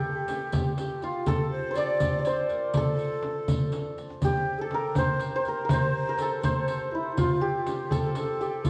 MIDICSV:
0, 0, Header, 1, 6, 480
1, 0, Start_track
1, 0, Tempo, 492207
1, 1231, Time_signature, 6, 3, 24, 8
1, 8483, End_track
2, 0, Start_track
2, 0, Title_t, "Ney"
2, 0, Program_c, 0, 77
2, 0, Note_on_c, 0, 67, 77
2, 746, Note_off_c, 0, 67, 0
2, 757, Note_on_c, 0, 67, 68
2, 1003, Note_on_c, 0, 65, 78
2, 1018, Note_off_c, 0, 67, 0
2, 1235, Note_on_c, 0, 69, 82
2, 1250, Note_off_c, 0, 65, 0
2, 1460, Note_off_c, 0, 69, 0
2, 1465, Note_on_c, 0, 72, 83
2, 1708, Note_on_c, 0, 74, 96
2, 1723, Note_off_c, 0, 72, 0
2, 2206, Note_on_c, 0, 72, 80
2, 2220, Note_off_c, 0, 74, 0
2, 2440, Note_on_c, 0, 70, 69
2, 2454, Note_off_c, 0, 72, 0
2, 2679, Note_on_c, 0, 69, 80
2, 2694, Note_off_c, 0, 70, 0
2, 3876, Note_off_c, 0, 69, 0
2, 4113, Note_on_c, 0, 67, 80
2, 4476, Note_on_c, 0, 69, 84
2, 4490, Note_off_c, 0, 67, 0
2, 4830, Note_on_c, 0, 72, 79
2, 4844, Note_off_c, 0, 69, 0
2, 5191, Note_off_c, 0, 72, 0
2, 5204, Note_on_c, 0, 72, 78
2, 5320, Note_on_c, 0, 70, 78
2, 5335, Note_off_c, 0, 72, 0
2, 5563, Note_on_c, 0, 72, 87
2, 5577, Note_off_c, 0, 70, 0
2, 6029, Note_on_c, 0, 69, 75
2, 6044, Note_off_c, 0, 72, 0
2, 6259, Note_on_c, 0, 72, 70
2, 6274, Note_off_c, 0, 69, 0
2, 6744, Note_on_c, 0, 64, 72
2, 6759, Note_off_c, 0, 72, 0
2, 6986, Note_off_c, 0, 64, 0
2, 6991, Note_on_c, 0, 65, 77
2, 7231, Note_on_c, 0, 67, 76
2, 7246, Note_off_c, 0, 65, 0
2, 7464, Note_off_c, 0, 67, 0
2, 7470, Note_on_c, 0, 67, 75
2, 7707, Note_on_c, 0, 69, 71
2, 7722, Note_off_c, 0, 67, 0
2, 7941, Note_off_c, 0, 69, 0
2, 7947, Note_on_c, 0, 69, 86
2, 8426, Note_on_c, 0, 65, 73
2, 8440, Note_off_c, 0, 69, 0
2, 8483, Note_off_c, 0, 65, 0
2, 8483, End_track
3, 0, Start_track
3, 0, Title_t, "Santur"
3, 0, Program_c, 1, 15
3, 0, Note_on_c, 1, 65, 82
3, 0, Note_on_c, 1, 67, 90
3, 0, Note_on_c, 1, 69, 66
3, 1006, Note_off_c, 1, 65, 0
3, 1009, Note_on_c, 1, 65, 73
3, 1245, Note_off_c, 1, 69, 0
3, 1248, Note_on_c, 1, 69, 100
3, 1666, Note_on_c, 1, 72, 76
3, 1730, Note_on_c, 1, 74, 101
3, 2134, Note_off_c, 1, 74, 0
3, 2138, Note_on_c, 1, 74, 65
3, 2209, Note_off_c, 1, 72, 0
3, 2213, Note_on_c, 1, 72, 82
3, 2699, Note_off_c, 1, 69, 0
3, 2703, Note_on_c, 1, 69, 82
3, 2863, Note_off_c, 1, 67, 0
3, 4141, Note_on_c, 1, 67, 89
3, 4290, Note_off_c, 1, 65, 0
3, 4495, Note_off_c, 1, 69, 0
3, 4499, Note_on_c, 1, 69, 78
3, 4540, Note_off_c, 1, 74, 0
3, 4625, Note_on_c, 1, 70, 85
3, 4684, Note_off_c, 1, 69, 0
3, 4785, Note_off_c, 1, 72, 0
3, 4859, Note_on_c, 1, 72, 93
3, 5220, Note_off_c, 1, 72, 0
3, 5224, Note_on_c, 1, 72, 94
3, 5342, Note_off_c, 1, 70, 0
3, 5346, Note_on_c, 1, 70, 76
3, 5504, Note_off_c, 1, 70, 0
3, 5507, Note_on_c, 1, 70, 72
3, 5588, Note_off_c, 1, 72, 0
3, 5592, Note_on_c, 1, 72, 96
3, 5935, Note_off_c, 1, 70, 0
3, 5939, Note_on_c, 1, 70, 83
3, 6067, Note_on_c, 1, 69, 88
3, 6125, Note_off_c, 1, 70, 0
3, 6281, Note_off_c, 1, 72, 0
3, 6285, Note_on_c, 1, 72, 97
3, 6775, Note_on_c, 1, 64, 69
3, 7001, Note_on_c, 1, 65, 88
3, 7060, Note_off_c, 1, 64, 0
3, 7197, Note_off_c, 1, 67, 0
3, 7230, Note_on_c, 1, 67, 80
3, 7717, Note_off_c, 1, 69, 0
3, 7721, Note_on_c, 1, 69, 91
3, 8195, Note_off_c, 1, 67, 0
3, 8199, Note_on_c, 1, 67, 77
3, 8441, Note_off_c, 1, 65, 0
3, 8444, Note_on_c, 1, 65, 72
3, 8483, Note_off_c, 1, 65, 0
3, 8483, Note_off_c, 1, 67, 0
3, 8483, Note_off_c, 1, 69, 0
3, 8483, Note_off_c, 1, 72, 0
3, 8483, End_track
4, 0, Start_track
4, 0, Title_t, "Frame drum"
4, 280, Note_on_c, 9, 64, 70
4, 377, Note_off_c, 9, 64, 0
4, 519, Note_on_c, 9, 64, 85
4, 616, Note_off_c, 9, 64, 0
4, 760, Note_on_c, 9, 64, 65
4, 858, Note_off_c, 9, 64, 0
4, 1237, Note_on_c, 9, 64, 89
4, 1334, Note_off_c, 9, 64, 0
4, 1721, Note_on_c, 9, 64, 63
4, 1819, Note_off_c, 9, 64, 0
4, 1953, Note_on_c, 9, 64, 80
4, 2050, Note_off_c, 9, 64, 0
4, 2193, Note_on_c, 9, 64, 64
4, 2291, Note_off_c, 9, 64, 0
4, 2672, Note_on_c, 9, 64, 95
4, 2769, Note_off_c, 9, 64, 0
4, 3146, Note_on_c, 9, 64, 62
4, 3243, Note_off_c, 9, 64, 0
4, 3396, Note_on_c, 9, 64, 81
4, 3493, Note_off_c, 9, 64, 0
4, 3635, Note_on_c, 9, 64, 63
4, 3733, Note_off_c, 9, 64, 0
4, 4112, Note_on_c, 9, 64, 80
4, 4210, Note_off_c, 9, 64, 0
4, 4591, Note_on_c, 9, 64, 64
4, 4689, Note_off_c, 9, 64, 0
4, 4829, Note_on_c, 9, 64, 90
4, 4927, Note_off_c, 9, 64, 0
4, 5068, Note_on_c, 9, 64, 65
4, 5166, Note_off_c, 9, 64, 0
4, 5550, Note_on_c, 9, 64, 104
4, 5648, Note_off_c, 9, 64, 0
4, 6034, Note_on_c, 9, 64, 64
4, 6131, Note_off_c, 9, 64, 0
4, 6278, Note_on_c, 9, 64, 90
4, 6376, Note_off_c, 9, 64, 0
4, 6514, Note_on_c, 9, 64, 63
4, 6612, Note_off_c, 9, 64, 0
4, 6997, Note_on_c, 9, 64, 85
4, 7094, Note_off_c, 9, 64, 0
4, 7475, Note_on_c, 9, 64, 73
4, 7573, Note_off_c, 9, 64, 0
4, 7713, Note_on_c, 9, 64, 75
4, 7810, Note_off_c, 9, 64, 0
4, 7950, Note_on_c, 9, 64, 71
4, 8048, Note_off_c, 9, 64, 0
4, 8431, Note_on_c, 9, 64, 75
4, 8483, Note_off_c, 9, 64, 0
4, 8483, End_track
5, 0, Start_track
5, 0, Title_t, "Riq"
5, 271, Note_on_c, 9, 54, 48
5, 369, Note_off_c, 9, 54, 0
5, 511, Note_on_c, 9, 54, 62
5, 608, Note_off_c, 9, 54, 0
5, 759, Note_on_c, 9, 54, 42
5, 856, Note_off_c, 9, 54, 0
5, 994, Note_on_c, 9, 54, 20
5, 1092, Note_off_c, 9, 54, 0
5, 1232, Note_on_c, 9, 54, 60
5, 1329, Note_off_c, 9, 54, 0
5, 1710, Note_on_c, 9, 54, 46
5, 1808, Note_off_c, 9, 54, 0
5, 1951, Note_on_c, 9, 54, 63
5, 2049, Note_off_c, 9, 54, 0
5, 2193, Note_on_c, 9, 54, 43
5, 2291, Note_off_c, 9, 54, 0
5, 2431, Note_on_c, 9, 54, 20
5, 2528, Note_off_c, 9, 54, 0
5, 2668, Note_on_c, 9, 54, 57
5, 2765, Note_off_c, 9, 54, 0
5, 2912, Note_on_c, 9, 54, 19
5, 3010, Note_off_c, 9, 54, 0
5, 3394, Note_on_c, 9, 54, 59
5, 3492, Note_off_c, 9, 54, 0
5, 3628, Note_on_c, 9, 54, 41
5, 3725, Note_off_c, 9, 54, 0
5, 3878, Note_on_c, 9, 54, 18
5, 3975, Note_off_c, 9, 54, 0
5, 4112, Note_on_c, 9, 54, 58
5, 4210, Note_off_c, 9, 54, 0
5, 4835, Note_on_c, 9, 54, 59
5, 4932, Note_off_c, 9, 54, 0
5, 5074, Note_on_c, 9, 54, 44
5, 5172, Note_off_c, 9, 54, 0
5, 5314, Note_on_c, 9, 54, 21
5, 5411, Note_off_c, 9, 54, 0
5, 5561, Note_on_c, 9, 54, 63
5, 5658, Note_off_c, 9, 54, 0
5, 6030, Note_on_c, 9, 54, 46
5, 6127, Note_off_c, 9, 54, 0
5, 6274, Note_on_c, 9, 54, 57
5, 6371, Note_off_c, 9, 54, 0
5, 6512, Note_on_c, 9, 54, 44
5, 6610, Note_off_c, 9, 54, 0
5, 6996, Note_on_c, 9, 54, 56
5, 7094, Note_off_c, 9, 54, 0
5, 7477, Note_on_c, 9, 54, 46
5, 7574, Note_off_c, 9, 54, 0
5, 7724, Note_on_c, 9, 54, 61
5, 7821, Note_off_c, 9, 54, 0
5, 7953, Note_on_c, 9, 54, 42
5, 8050, Note_off_c, 9, 54, 0
5, 8202, Note_on_c, 9, 54, 20
5, 8299, Note_off_c, 9, 54, 0
5, 8433, Note_on_c, 9, 54, 58
5, 8483, Note_off_c, 9, 54, 0
5, 8483, End_track
6, 0, Start_track
6, 0, Title_t, "Tombak"
6, 274, Note_on_c, 9, 63, 73
6, 371, Note_off_c, 9, 63, 0
6, 519, Note_on_c, 9, 64, 96
6, 616, Note_off_c, 9, 64, 0
6, 756, Note_on_c, 9, 63, 68
6, 853, Note_off_c, 9, 63, 0
6, 999, Note_on_c, 9, 62, 27
6, 1096, Note_off_c, 9, 62, 0
6, 1236, Note_on_c, 9, 64, 111
6, 1334, Note_off_c, 9, 64, 0
6, 1724, Note_on_c, 9, 63, 62
6, 1822, Note_off_c, 9, 63, 0
6, 1966, Note_on_c, 9, 64, 87
6, 2063, Note_off_c, 9, 64, 0
6, 2206, Note_on_c, 9, 63, 62
6, 2303, Note_off_c, 9, 63, 0
6, 2440, Note_on_c, 9, 62, 25
6, 2537, Note_off_c, 9, 62, 0
6, 2681, Note_on_c, 9, 64, 74
6, 2778, Note_off_c, 9, 64, 0
6, 2915, Note_on_c, 9, 62, 23
6, 3012, Note_off_c, 9, 62, 0
6, 3163, Note_on_c, 9, 63, 62
6, 3261, Note_off_c, 9, 63, 0
6, 3392, Note_on_c, 9, 64, 82
6, 3489, Note_off_c, 9, 64, 0
6, 3634, Note_on_c, 9, 63, 53
6, 3732, Note_off_c, 9, 63, 0
6, 3760, Note_on_c, 9, 62, 57
6, 3858, Note_off_c, 9, 62, 0
6, 3884, Note_on_c, 9, 63, 74
6, 3982, Note_off_c, 9, 63, 0
6, 4002, Note_on_c, 9, 62, 80
6, 4099, Note_off_c, 9, 62, 0
6, 4119, Note_on_c, 9, 64, 98
6, 4217, Note_off_c, 9, 64, 0
6, 4841, Note_on_c, 9, 64, 81
6, 4939, Note_off_c, 9, 64, 0
6, 5079, Note_on_c, 9, 63, 67
6, 5177, Note_off_c, 9, 63, 0
6, 5327, Note_on_c, 9, 62, 26
6, 5424, Note_off_c, 9, 62, 0
6, 5557, Note_on_c, 9, 64, 79
6, 5654, Note_off_c, 9, 64, 0
6, 6045, Note_on_c, 9, 63, 68
6, 6142, Note_off_c, 9, 63, 0
6, 6277, Note_on_c, 9, 64, 84
6, 6375, Note_off_c, 9, 64, 0
6, 6523, Note_on_c, 9, 63, 63
6, 6620, Note_off_c, 9, 63, 0
6, 6763, Note_on_c, 9, 62, 27
6, 6860, Note_off_c, 9, 62, 0
6, 7000, Note_on_c, 9, 64, 96
6, 7098, Note_off_c, 9, 64, 0
6, 7482, Note_on_c, 9, 63, 72
6, 7579, Note_off_c, 9, 63, 0
6, 7720, Note_on_c, 9, 64, 80
6, 7818, Note_off_c, 9, 64, 0
6, 7958, Note_on_c, 9, 63, 66
6, 8056, Note_off_c, 9, 63, 0
6, 8200, Note_on_c, 9, 62, 27
6, 8297, Note_off_c, 9, 62, 0
6, 8437, Note_on_c, 9, 64, 97
6, 8483, Note_off_c, 9, 64, 0
6, 8483, End_track
0, 0, End_of_file